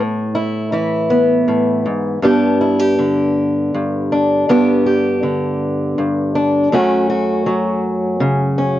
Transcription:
0.00 1.47 A2 medium
0.00 0.34 E4 medium
0.35 0.72 E4 medium
0.72 2.19 E3 medium
0.72 2.24 E4 medium
1.10 2.19 B3 medium
1.48 1.86 A2 medium
1.86 2.22 G#2 medium
2.23 3.73 G2 medium
2.23 4.44 B3 medium
2.23 4.11 D4 medium
2.23 2.61 G4 medium
2.61 2.79 E4 medium
2.79 4.49 G4 soft
2.98 5.22 D3 medium
3.74 4.45 G2 medium
4.12 4.45 D4 medium
4.49 5.97 G2 medium
4.49 6.68 B3 medium
4.49 6.34 D4 medium
4.49 4.85 G4 medium
4.86 6.68 G4 medium
5.23 6.72 D3 medium
5.98 6.68 G2 medium
6.35 6.68 D4 medium
6.72 8.79 F#2 medium
6.72 8.79 A3 medium
6.72 8.57 C#4 medium
6.72 7.09 F#4 medium
7.09 8.79 F#4 medium
7.46 8.79 F#3 medium
8.20 8.79 C#3 medium
8.58 8.79 C#4 medium

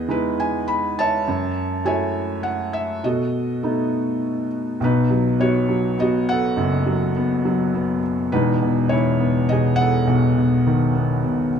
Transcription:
0.00 1.23 E2 medium
0.00 0.36 G#4 medium
0.00 0.11 B4 medium
0.00 1.29 D#5 medium
0.08 1.23 G#3 soft
0.08 1.23 D#4 soft
0.08 1.24 E4 soft
0.08 0.41 B4 medium
0.40 0.70 G#5 medium
0.68 0.95 B5 medium
0.99 1.83 C#5 medium
0.99 1.83 E5 medium
0.99 1.89 A5 loud
1.28 3.00 F#2 medium
1.85 2.99 A3 soft
1.85 2.99 E4 soft
1.85 2.99 F#4 soft
1.85 2.71 C#5 medium
1.85 2.71 E5 medium
1.85 2.46 G#5 medium
2.43 2.74 F#5 medium
2.73 3.01 E5 medium
3.04 4.76 B2 medium
3.04 4.48 F#4 medium
3.04 4.48 A4 medium
3.04 4.47 D#5 medium
3.63 4.77 A3 soft
3.63 4.77 B3 soft
3.63 4.78 D#4 soft
4.80 6.52 B1 medium
4.80 6.53 B2 medium
4.80 5.43 B4 medium
4.85 5.37 D#4 medium
5.10 5.67 F#3 medium
5.40 5.96 B3 medium
5.40 5.95 F#4 medium
5.40 5.94 C#5 medium
5.68 6.82 F#3 medium
5.98 7.11 B3 soft
5.98 6.27 F#4 medium
5.98 6.29 D#5 medium
6.29 8.01 A4 medium
6.29 7.99 F#5 loud
6.56 8.28 F#1 medium
6.56 8.28 F#2 medium
6.86 7.44 F#3 medium
7.16 7.73 B3 medium
7.45 8.30 F#3 medium
7.75 8.31 B3 medium
8.32 10.04 E1 medium
8.32 10.04 E2 medium
8.32 8.87 D#4 medium
8.32 8.92 B4 medium
8.62 9.48 B2 medium
8.89 10.04 E3 medium
8.89 9.46 E4 medium
8.89 9.50 C#5 medium
9.20 10.33 B3 medium
9.49 10.35 B2 medium
9.49 9.78 G#4 medium
9.49 9.76 D#5 medium
9.76 11.49 F#5 loud
9.81 11.52 A4 medium
10.07 11.60 B1 medium
10.36 11.22 B2 medium
10.66 11.60 D#3 medium
10.95 11.60 B3 soft
11.24 11.60 B2 soft

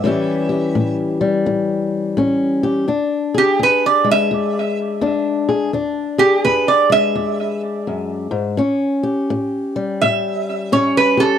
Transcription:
0.00 0.70 A2 medium
0.00 0.96 E5 medium
0.05 2.91 E3 medium
0.05 1.20 G3 medium
0.05 2.17 C#4 medium
0.05 0.48 G4 medium
0.49 2.62 G4 medium
0.75 1.41 A2 medium
1.21 2.88 G3 medium
1.46 2.12 A2 medium
2.17 2.83 A2 medium
2.17 2.85 C#4 medium
2.63 2.86 G4 medium
2.88 3.54 E2 medium
2.88 5.01 D4 medium
3.34 3.60 G4 medium
3.34 5.47 G#4 medium
3.59 4.25 E2 medium
3.59 3.84 B4 medium
3.86 4.08 D5 medium
4.04 5.69 G#3 medium
4.11 4.78 E5 medium
4.31 4.97 E2 medium
5.01 5.67 E2 medium
5.01 5.70 D4 medium
5.49 5.70 G#4 medium
5.73 6.39 E2 medium
5.73 8.55 D4 medium
6.18 6.43 G4 medium
6.18 8.55 G#4 medium
6.45 7.10 E2 medium
6.45 6.67 B4 medium
6.68 6.91 D5 medium
6.90 8.55 G#3 medium
6.90 7.61 E5 loud
7.15 7.81 E2 medium
7.87 8.31 F#2 medium
8.31 8.57 G#2 medium
8.57 9.23 A2 medium
8.57 10.71 C#4 medium
9.03 11.16 G4 medium
9.30 9.96 A2 medium
9.76 11.38 G3 medium
10.01 10.68 A2 medium
10.01 10.70 E5 medium
10.72 11.38 A2 medium
10.72 11.38 C#4 medium
10.72 10.95 C#5 medium
10.97 11.19 B4 medium
11.17 11.38 G4 medium
11.17 11.38 A4 medium

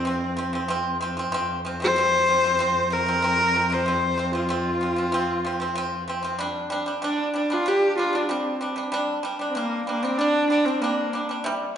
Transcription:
0.00 1.34 F2 medium
0.00 1.03 C4 medium
0.05 0.31 F3 medium
0.05 0.32 C4 medium
0.37 0.50 F3 medium
0.37 0.51 C4 medium
0.53 0.67 F3 medium
0.53 0.68 C4 medium
0.68 0.95 F3 loud
0.68 0.96 C4 loud
1.01 1.14 F3 medium
1.01 1.15 C4 medium
1.17 1.30 F3 medium
1.17 1.31 C4 medium
1.32 6.47 F2 medium
1.32 1.58 F3 loud
1.32 1.60 C4 loud
1.65 1.78 F3 medium
1.65 1.79 C4 medium
1.80 1.94 F3 medium
1.80 1.95 C4 medium
1.80 2.95 C5 loud
1.96 2.22 F3 medium
1.96 2.23 C4 loud
2.28 2.41 F3 medium
2.28 2.42 C4 medium
2.44 2.57 F3 medium
2.44 2.58 C4 medium
2.59 2.85 F3 loud
2.59 2.86 C4 loud
2.90 3.04 F3 medium
2.90 3.05 C4 medium
2.90 3.76 A#4 loud
3.06 3.20 F3 medium
3.06 3.21 C4 medium
3.22 3.49 F3 medium
3.22 3.50 C4 loud
3.54 3.68 F3 medium
3.54 3.69 C4 medium
3.70 3.83 F3 medium
3.70 3.85 C4 medium
3.74 4.36 C5 medium
3.86 4.12 F3 medium
3.86 4.13 C4 medium
4.18 4.31 F3 medium
4.18 4.32 C4 medium
4.33 4.47 F3 medium
4.33 4.48 C4 medium
4.33 6.06 F4 medium
4.49 4.75 F3 medium
4.49 4.76 C4 medium
4.81 4.94 F3 medium
4.81 4.95 C4 medium
4.96 5.10 F3 medium
4.96 5.11 C4 medium
5.12 5.38 F3 medium
5.12 5.39 C4 loud
5.45 5.58 F3 medium
5.45 5.59 C4 medium
5.60 5.73 F3 medium
5.60 5.74 C4 medium
5.75 6.02 F3 medium
5.75 6.03 C4 loud
6.08 6.21 F3 medium
6.08 6.22 C4 medium
6.23 6.36 F3 medium
6.23 6.37 C4 medium
6.39 6.65 G3 loud
6.39 6.66 D4 loud
6.70 6.84 G3 medium
6.70 6.85 D4 loud
6.86 7.00 G3 medium
6.86 7.00 D4 medium
7.02 7.28 G3 medium
7.02 7.29 D4 loud
7.02 7.34 D4 medium
7.34 7.47 G3 medium
7.34 7.48 D4 medium
7.34 7.55 D4 medium
7.50 7.63 G3 medium
7.50 7.64 D4 medium
7.50 7.70 F4 medium
7.66 7.92 G3 medium
7.66 7.93 D4 medium
7.66 7.98 G4 loud
7.98 8.11 G3 medium
7.98 8.11 D4 medium
7.98 8.17 F4 medium
8.13 8.26 G3 medium
8.13 8.27 D4 medium
8.13 8.32 D4 medium
8.29 8.55 G3 medium
8.29 8.78 C4 medium
8.29 8.56 D4 loud
8.61 8.74 G3 medium
8.61 8.74 D4 medium
8.76 8.89 G3 medium
8.76 8.90 D4 medium
8.92 9.18 G3 loud
8.92 9.19 D4 loud
9.23 9.36 G3 medium
9.23 9.37 D4 medium
9.39 9.52 G3 medium
9.39 9.53 D4 medium
9.49 9.58 C4 medium
9.55 9.81 G3 medium
9.55 9.87 A#3 medium
9.55 9.82 D4 loud
9.87 10.00 G3 medium
9.87 10.05 A#3 medium
9.87 10.01 D4 medium
10.03 10.16 G3 medium
10.03 10.19 C4 medium
10.03 10.17 D4 medium
10.18 10.44 G3 medium
10.18 10.50 D4 loud
10.18 10.45 D4 loud
10.50 10.63 G3 medium
10.50 10.67 D4 loud
10.50 10.64 D4 medium
10.65 10.79 G3 medium
10.65 10.83 C4 medium
10.65 10.80 D4 medium
10.81 11.07 G3 medium
10.81 11.29 A#3 medium
10.81 11.08 D4 loud
11.13 11.26 G3 medium
11.13 11.27 D4 medium
11.29 11.42 G3 medium
11.29 11.43 D4 medium
11.44 11.70 C3 loud
11.44 11.71 G3 loud

